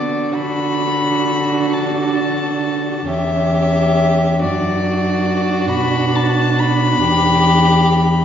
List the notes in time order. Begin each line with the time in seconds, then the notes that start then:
Already playing: D3 B3 F#4 D5
0.33 D4 F#4 B5
1.73 A5
3.08 E2 C#4 G4 E5
4.41 F#2 D4 F#4 D5
5.71 B2 B5
6.15 A5
6.59 B5
7.02 E2 G4